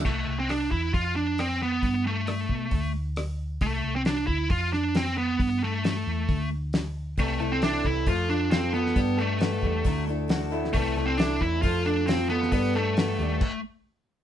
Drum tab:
CC |x---------------|----------------|----------------|----------------|
HH |----o---o---o---|o---o---o---o---|o---o---o---o---|o---o---o---o---|
SD |----r-------r---|----r-------r---|----o-----o-o---|----o-------o---|
BD |o-----o-o-------|o-----o-o-------|o-----o-o-------|o-------o-------|

CC |----------------|----------------|----------------|--------x-------|
HH |o---o---o---o---|o---o---o---o---|o---o---o---o---|o---o-----------|
SD |----o-------o--o|----o-------o--o|----o-------o--o|----o-----------|
BD |o-----o-o-------|o-----o-o-------|o-----o-o-------|o-------o-------|